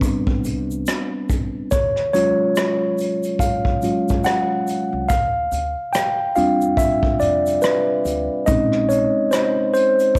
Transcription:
0.00 0.83 G3 medium
0.00 0.83 B3 soft
0.00 0.83 C4 medium
0.00 0.83 D4 medium
0.00 kick medium
0.00 closed hi-hat medium
0.00 shaker medium
0.27 muted upright bass stroke soft
0.27 kick loud
0.44 0.82 C2 medium
0.44 closed hi-hat medium
0.44 shaker soft
0.71 shaker soft
0.86 cross-stick loud
0.86 closed hi-hat medium
0.86 shaker medium
1.29 1.51 A1 medium
1.29 kick medium
1.29 closed hi-hat medium
1.29 shaker soft
1.71 2.30 D#2 medium
1.71 2.12 C#5 loud
1.71 kick loud
1.71 closed hi-hat medium
1.71 shaker medium
1.96 cross-stick soft
2.13 2.73 F#3 medium
2.13 2.73 G#3 medium
2.13 2.73 C#4 medium
2.13 2.73 F4 medium
2.13 3.36 C#5 medium
2.13 closed hi-hat medium
2.13 shaker medium
2.56 cross-stick loud
2.56 closed hi-hat medium
2.56 shaker medium
2.98 closed hi-hat medium
2.98 shaker soft
3.23 closed hi-hat soft
3.23 shaker medium
3.39 4.27 F5 medium
3.39 kick loud
3.39 closed hi-hat loud
3.39 shaker medium
3.65 kick loud
3.82 4.21 F#3 soft
3.82 4.21 G#3 soft
3.82 4.21 C#4 soft
3.82 4.21 F4 soft
3.82 closed hi-hat medium
3.82 shaker soft
4.08 kick medium
4.08 closed hi-hat soft
4.08 shaker medium
4.24 5.12 F#5 loud
4.24 cross-stick loud
4.24 closed hi-hat medium
4.24 shaker medium
4.67 closed hi-hat medium
4.67 shaker soft
4.92 5.10 C2 medium
5.09 5.47 D2 loud
5.09 5.90 F5 loud
5.09 kick loud
5.09 closed hi-hat medium
5.09 shaker medium
5.52 5.73 D2 medium
5.52 closed hi-hat medium
5.52 shaker soft
5.93 6.33 G5 loud
5.93 cross-stick loud
5.93 closed hi-hat medium
5.93 shaker medium
6.36 6.73 E2 medium
6.36 7.59 G3 soft
6.36 7.59 C4 soft
6.36 7.60 D4 medium
6.36 7.59 F4 medium
6.36 6.79 F5 medium
6.36 closed hi-hat medium
6.36 shaker soft
6.61 shaker medium
6.77 7.21 E5 loud
6.77 kick medium
6.77 closed hi-hat loud
6.77 shaker medium
7.03 muted upright bass stroke soft
7.03 kick medium
7.20 7.58 F2 medium
7.20 7.59 D5 loud
7.20 closed hi-hat medium
7.20 shaker soft
7.46 closed hi-hat soft
7.46 shaker medium
7.62 8.26 B4 medium
7.62 cross-stick loud
7.62 closed hi-hat medium
7.62 shaker medium
8.05 8.27 D2 loud
8.05 closed hi-hat medium
8.05 shaker soft
8.46 9.06 A#1 loud
8.46 9.06 G#3 medium
8.46 9.07 C4 medium
8.46 9.07 C#4 medium
8.46 9.07 D#4 medium
8.46 8.86 D#5 loud
8.46 kick loud
8.46 closed hi-hat medium
8.46 shaker medium
8.72 cross-stick soft
8.89 9.28 C#5 medium
8.89 closed hi-hat medium
8.89 shaker medium
9.31 9.71 C5 medium
9.31 cross-stick loud
9.31 closed hi-hat medium
9.31 shaker medium
9.74 10.19 C5 medium
9.74 closed hi-hat medium
9.74 shaker soft
9.99 closed hi-hat medium
9.99 shaker medium
10.15 kick loud

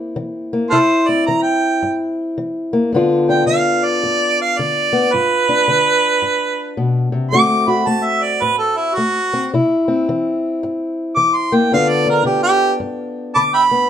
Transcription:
0.00 0.14 G2 medium
0.00 0.52 A#3 medium
0.00 0.70 C4 medium
0.00 0.71 E4 medium
0.16 0.68 E3 medium
0.53 0.71 A#3 medium
0.70 1.23 C3 medium
0.70 2.93 E4 medium
0.70 0.78 F4 medium
0.70 0.78 A4 medium
0.70 1.09 C5 loud
1.08 2.91 C4 medium
1.08 1.26 D5 medium
1.26 1.79 E3 medium
1.26 1.42 A#5 medium
1.43 1.98 G5 medium
1.82 2.34 G2 medium
2.38 2.89 E3 medium
2.73 2.91 A#3 medium
2.93 3.44 G2 medium
2.93 3.46 D3 medium
2.93 4.92 B3 medium
2.93 3.29 D4 medium
2.93 5.12 F4 medium
3.29 5.49 D4 medium
3.29 3.46 G5 medium
3.47 3.98 D3 medium
3.47 3.86 F5 medium
3.85 4.38 D5 loud
4.03 4.54 G2 medium
4.41 4.60 F5 medium
4.58 5.09 D3 medium
4.58 5.14 D5 medium
4.93 5.10 B3 medium
5.13 5.64 G2 medium
5.13 7.31 F4 medium
5.13 6.73 B4 loud
5.49 7.31 D4 medium
5.68 6.19 D3 medium
6.22 6.73 G2 medium
6.77 7.12 B2 medium
7.12 7.32 C3 medium
7.31 7.83 D3 medium
7.31 7.86 A3 medium
7.31 9.32 C4 medium
7.31 7.67 F#4 medium
7.31 7.70 D6 loud
7.68 9.50 F#4 medium
7.68 7.89 B5 medium
7.87 8.38 A3 medium
7.87 8.06 A5 medium
8.04 8.24 E5 medium
8.23 8.43 D5 medium
8.42 8.93 A2 medium
8.42 8.58 B4 medium
8.58 8.79 A4 medium
8.77 8.96 E4 medium
8.94 9.48 A3 medium
8.94 9.49 F#4 medium
9.34 9.50 C4 medium
9.54 10.04 C3 medium
9.54 11.72 E4 medium
9.88 11.70 C4 medium
10.09 10.59 E3 medium
10.63 11.13 G2 medium
11.16 11.67 E3 medium
11.16 11.37 D6 loud
11.35 11.56 C6 medium
11.52 11.70 A#3 medium
11.52 11.71 G5 medium
11.72 12.22 G2 medium
11.72 12.24 D3 medium
11.72 13.70 B3 medium
11.72 12.06 D4 medium
11.72 13.90 F4 medium
11.72 11.90 F5 medium
11.89 12.07 D5 medium
12.07 13.90 D4 medium
12.07 12.26 A#4 medium
12.25 12.76 D3 medium
12.25 12.43 G4 medium
12.43 12.73 G4 loud
12.80 13.31 G2 medium
13.35 13.87 D3 medium
13.35 13.42 A5 medium
13.35 13.41 B5 medium
13.35 13.53 D6 loud
13.54 13.62 E5 medium
13.54 13.62 G5 medium
13.54 13.90 B5 loud
13.71 13.89 B3 medium

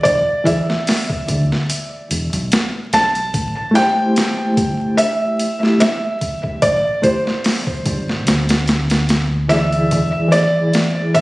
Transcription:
0.03 0.25 E1 loud
0.03 0.46 D5 medium
0.03 kick loud
0.03 closed hi-hat medium
0.44 0.70 E3 medium
0.44 0.71 E4 medium
0.44 0.72 G#4 medium
0.44 2.06 E5 medium
0.44 kick medium
0.44 closed hi-hat medium
0.48 0.73 D5 medium
0.70 snare medium
0.87 snare loud
0.87 open hi-hat medium
1.10 kick medium
1.28 1.48 D2 medium
1.28 kick loud
1.28 closed hi-hat medium
1.52 snare soft
1.70 closed hi-hat medium
2.11 2.30 E1 medium
2.11 closed hi-hat medium
2.33 2.49 B1 loud
2.33 closed hi-hat soft
2.52 snare loud
2.52 closed hi-hat medium
2.93 3.29 B1 medium
2.93 3.78 A5 loud
2.93 snare medium
2.93 closed hi-hat medium
3.15 closed hi-hat soft
3.34 3.53 A1 medium
3.34 kick loud
3.34 closed hi-hat medium
3.71 5.54 A3 medium
3.71 5.55 E4 medium
3.75 5.57 G4 medium
3.75 5.58 C5 medium
3.75 5.02 G5 loud
3.75 snare medium
3.75 closed hi-hat medium
4.16 snare loud
4.16 closed hi-hat medium
4.57 4.77 G1 medium
4.57 kick medium
4.57 closed hi-hat medium
4.97 5.76 E5 loud
4.97 closed hi-hat medium
5.39 closed hi-hat medium
5.60 5.83 A3 medium
5.60 5.84 E4 medium
5.60 5.85 G4 medium
5.60 5.85 E5 medium
5.60 snare soft
5.80 6.58 E5 loud
5.80 snare loud
5.80 closed hi-hat medium
6.21 kick loud
6.21 closed hi-hat medium
6.44 kick medium
6.62 6.82 A1 medium
6.62 7.05 D5 medium
6.62 kick loud
6.62 closed hi-hat medium
7.02 7.28 A3 medium
7.02 7.29 E4 medium
7.02 7.30 G4 medium
7.02 8.64 C5 medium
7.02 kick loud
7.02 closed hi-hat medium
7.06 7.30 C5 loud
7.27 snare medium
7.44 snare loud
7.44 open hi-hat medium
7.67 kick medium
7.86 8.27 G1 medium
7.86 kick medium
7.86 closed hi-hat medium
8.09 snare soft
8.27 9.88 D2 medium
8.27 snare loud
8.27 closed hi-hat medium
8.49 snare loud
8.49 closed hi-hat medium
8.68 snare loud
8.68 closed hi-hat medium
8.90 snare loud
8.90 closed hi-hat medium
9.09 snare loud
9.09 closed hi-hat medium
9.48 10.27 E3 medium
9.48 10.28 E4 medium
9.48 10.28 G#4 medium
9.48 10.29 D5 loud
9.48 10.28 E5 loud
9.48 snare medium
9.48 closed hi-hat medium
9.72 closed hi-hat soft
9.91 10.11 E1 medium
9.91 kick loud
9.91 closed hi-hat medium
10.28 11.21 E3 medium
10.28 11.21 E4 medium
10.28 11.10 D5 loud
10.32 11.21 G#4 medium
10.32 snare medium
10.32 closed hi-hat medium
10.37 11.21 D5 loud
10.73 snare loud
10.73 closed hi-hat medium
11.14 11.21 D2 medium
11.14 11.21 E5 loud
11.14 kick medium
11.14 closed hi-hat medium

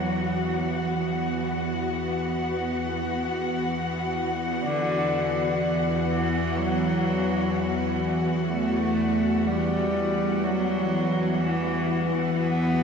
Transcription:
0.00 12.83 E2 medium
0.00 12.83 E3 medium
0.00 0.54 F#3 medium
0.00 12.83 B3 medium
0.00 12.83 F#4 medium
0.00 12.83 F#5 medium
4.63 5.56 D3 loud
6.09 6.58 E3 medium
6.57 8.02 F#3 medium
8.50 9.49 A3 medium
9.47 10.46 G3 medium
10.44 11.42 F#3 medium
11.40 12.13 E3 medium
12.38 12.83 B3 medium

